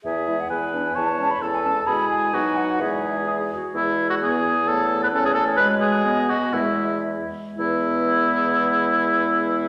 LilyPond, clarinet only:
\new Staff \with { instrumentName = "Clarinet" } { \time 2/4 \key e \major \tempo 4 = 128 r8 e'8 r8 d'8 | r8 cis'8 r8 cis'8 | e'4 dis'4 | e'4 gis'8 fis'8 |
r4 b4~ | b4 cis'4 | gis4 b4 | gis4. r8 |
b2~ | b2 | }